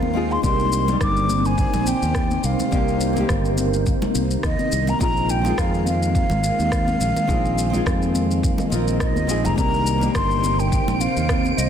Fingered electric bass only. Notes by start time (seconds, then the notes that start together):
Already playing: D#2
0.44 C2
1.01 G1
1.74 A#1
2.02 D#2
2.44 C2
2.72 C2
3.29 G1
4.15 C2
4.44 D#2
4.72 C2
5.01 A#1
5.58 F2
6.31 G#1
6.59 D#2
7.00 A#1
7.29 A#1
7.86 F2
8.72 A#1
9.16 D#2
9.29 A#1
9.45 F1
9.58 C2
10.15 G1
10.88 A#1
11.16 D#2
11.58 C2